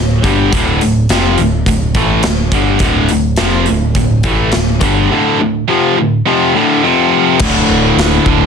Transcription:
0.00 0.23 D1 medium
0.00 0.19 D2 medium
0.00 0.19 A2 medium
0.24 0.51 G1 medium
0.24 0.52 G2 medium
0.24 0.53 D3 medium
0.24 0.53 G3 loud
0.24 kick medium
0.24 closed hi-hat medium
0.53 0.80 D1 loud
0.53 0.81 D2 loud
0.53 0.81 A2 loud
0.53 0.81 D3 medium
0.53 kick loud
0.53 closed hi-hat medium
0.81 1.08 D1 medium
0.81 1.05 D2 medium
0.81 1.05 A2 medium
0.81 closed hi-hat medium
1.09 1.36 F1 loud
1.09 1.39 F2 loud
1.09 1.39 C3 medium
1.09 1.39 F3 loud
1.09 snare medium
1.09 closed hi-hat medium
1.38 1.66 D1 medium
1.38 1.62 D2 medium
1.38 1.62 A2 medium
1.38 closed hi-hat medium
1.66 1.94 D1 medium
1.66 1.91 D2 medium
1.66 1.91 A2 medium
1.66 kick medium
1.66 closed hi-hat medium
1.95 2.23 A1 medium
1.95 2.23 A2 medium
1.95 2.24 E3 medium
1.95 2.24 A3 loud
1.95 kick medium
1.95 closed hi-hat medium
2.23 2.51 D1 medium
2.23 2.47 D2 medium
2.23 2.48 A2 medium
2.23 snare loud
2.23 closed hi-hat loud
2.52 2.80 G1 medium
2.52 2.79 G2 medium
2.52 2.79 D3 loud
2.52 2.80 G3 loud
2.52 kick medium
2.52 closed hi-hat medium
2.79 3.08 D1 loud
2.79 3.09 D2 loud
2.79 3.09 A2 loud
2.79 3.09 D3 loud
2.79 kick medium
2.79 closed hi-hat medium
3.09 3.38 D1 medium
3.09 3.34 D2 medium
3.09 3.34 A2 medium
3.09 closed hi-hat medium
3.36 3.67 F2 loud
3.36 3.67 C3 medium
3.36 3.67 F3 medium
3.36 snare medium
3.36 closed hi-hat medium
3.41 3.67 F1 medium
3.66 3.91 D2 medium
3.66 3.91 A2 medium
3.66 closed hi-hat medium
3.70 3.95 D1 medium
3.95 4.23 D1 medium
3.95 4.20 D2 medium
3.95 4.20 A2 medium
3.95 kick medium
3.95 closed hi-hat medium
4.23 4.52 A1 medium
4.23 4.52 A2 medium
4.23 4.53 E3 medium
4.23 4.54 A3 medium
4.23 kick loud
4.23 closed hi-hat medium
4.52 4.81 D1 medium
4.52 4.77 D2 medium
4.52 4.77 A2 medium
4.52 snare loud
4.52 closed hi-hat medium
4.81 5.09 G1 medium
4.81 5.10 G2 medium
4.81 5.10 D3 loud
4.81 5.11 G3 loud
4.81 kick medium
4.81 closed hi-hat medium
5.10 5.39 D2 loud
5.10 5.39 A2 medium
5.10 5.39 D3 loud
5.41 5.63 D2 medium
5.41 5.64 A2 medium
5.68 5.96 F2 medium
5.68 5.96 C3 loud
5.68 5.97 F3 loud
5.98 6.21 D2 medium
5.98 6.21 A2 medium
6.26 6.54 F2 medium
6.26 6.54 C3 medium
6.26 6.54 F3 loud
6.54 6.83 D2 medium
6.54 6.84 A2 medium
6.54 6.85 D3 loud
6.83 7.40 F2 medium
6.83 7.40 C3 medium
6.83 7.41 F3 loud
7.39 7.61 D1 loud
7.39 8.24 D2 loud
7.39 8.26 A2 loud
7.39 kick loud
7.39 crash loud
7.39 crash medium
7.44 8.26 D3 loud
7.70 7.90 D1 loud
7.97 8.18 D1 medium
7.97 snare loud
7.97 crash medium
8.26 8.46 D1 medium
8.26 8.46 A2 medium
8.26 8.46 D3 medium
8.26 kick medium
8.31 8.46 D2 medium

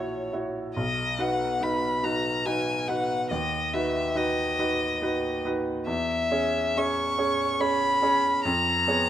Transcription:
0.00 0.78 A#1 soft
0.00 0.33 E4 soft
0.00 0.34 F#4 soft
0.00 0.32 C#5 soft
0.00 0.34 C#5 soft
0.33 0.72 E4 soft
0.33 0.72 F#4 soft
0.33 0.73 C#5 soft
0.75 1.18 B1 soft
0.75 1.22 D#5 medium
1.18 1.57 D#4 soft
1.18 1.58 F#4 soft
1.18 1.58 B4 soft
1.18 1.64 F#5 medium
1.61 2.00 D#4 soft
1.61 2.00 F#4 soft
1.61 2.01 B4 soft
1.61 2.05 B5 medium
2.03 2.42 D#4 soft
2.03 2.42 F#4 soft
2.03 2.42 B4 soft
2.03 2.47 A#5 medium
2.46 2.84 D#4 soft
2.46 2.84 F#4 soft
2.46 2.84 B4 soft
2.46 2.89 G#5 medium
2.87 3.27 D#4 soft
2.87 3.27 F#4 soft
2.87 3.27 B4 soft
2.87 3.30 F#5 medium
3.30 3.72 D#2 soft
3.30 3.75 D#5 medium
3.73 4.12 D#4 soft
3.73 4.12 F#4 soft
3.73 4.13 B4 soft
3.73 4.18 E5 medium
4.15 4.55 D#4 soft
4.15 4.55 F#4 soft
4.15 4.55 B4 soft
4.15 5.45 D#5 medium
4.59 4.99 D#4 soft
4.59 4.99 F#4 soft
4.59 4.99 B4 soft
5.02 5.41 D#4 soft
5.02 5.41 F#4 soft
5.02 5.41 B4 soft
5.45 5.83 D#4 soft
5.45 5.83 F#4 soft
5.45 5.84 B4 soft
5.87 6.30 E2 soft
5.87 6.78 E5 medium
6.31 6.73 C#4 soft
6.31 6.73 G#4 soft
6.31 6.73 C#5 soft
6.77 7.15 C#4 soft
6.77 7.15 G#4 soft
6.77 7.16 C#5 soft
6.77 7.62 C#6 medium
7.18 7.56 C#4 soft
7.18 7.56 G#4 soft
7.18 7.56 C#5 soft
7.60 7.98 C#4 soft
7.60 7.98 G#4 soft
7.60 7.98 C#5 soft
7.60 8.44 B5 medium
8.02 8.40 C#4 soft
8.02 8.41 G#4 soft
8.02 8.41 C#5 soft
8.44 8.86 F2 soft
8.44 9.09 A#5 medium
8.87 9.09 B3 soft
8.87 9.09 G#4 soft
8.87 9.09 C#5 soft

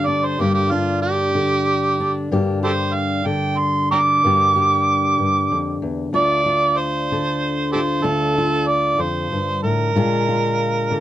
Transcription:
0.00 0.39 G2 medium
0.00 1.34 D3 medium
0.00 0.40 A#3 medium
0.00 2.28 G4 medium
0.06 0.41 D4 medium
0.06 0.27 D5 medium
0.25 0.42 C5 medium
0.39 2.27 G2 medium
0.39 2.27 A#3 medium
0.39 0.71 D4 medium
0.39 0.53 G4 medium
0.54 0.73 G4 medium
0.71 2.00 D4 medium
0.71 1.01 F4 medium
1.02 2.26 G4 medium
1.35 3.24 D3 medium
2.00 2.32 D4 medium
2.32 4.22 G2 medium
2.32 4.23 A#3 medium
2.32 3.92 D4 medium
2.32 2.62 G4 medium
2.63 4.22 G4 medium
2.63 2.72 G4 medium
2.63 2.72 A4 medium
2.63 2.96 C5 medium
2.94 3.28 F5 medium
3.26 7.09 D3 medium
3.26 3.59 G5 medium
3.58 3.89 C6 medium
3.91 4.25 D4 medium
3.91 3.98 G5 medium
3.91 3.99 A#5 medium
3.91 5.78 D6 loud
4.23 5.18 G2 medium
4.23 6.11 A#3 medium
4.23 6.13 D4 medium
4.23 4.55 G4 medium
4.56 6.11 G4 medium
5.19 5.50 G2 medium
5.52 5.82 F2 medium
5.82 6.12 E2 medium
6.13 8.02 D2 medium
6.13 8.04 D4 medium
6.13 6.46 F4 medium
6.13 6.79 D5 loud
6.46 7.75 F4 medium
6.78 7.70 C5 medium
7.12 10.90 D3 medium
7.72 8.04 F4 medium
7.72 7.80 G4 medium
7.72 7.79 A4 medium
7.72 8.06 C5 medium
8.03 8.98 D2 medium
8.03 9.92 D4 medium
8.03 8.36 F4 medium
8.03 8.69 A4 loud
8.38 9.93 F4 medium
8.67 9.02 D5 medium
8.98 9.31 F2 medium
8.98 9.62 C5 medium
9.32 9.64 G2 medium
9.63 9.95 A2 medium
9.63 11.00 A#4 medium
9.96 10.91 A#2 medium
9.96 11.00 G#3 medium
9.96 11.00 D4 medium
9.96 10.28 F4 medium
10.29 11.00 F4 medium
10.91 11.00 D3 medium

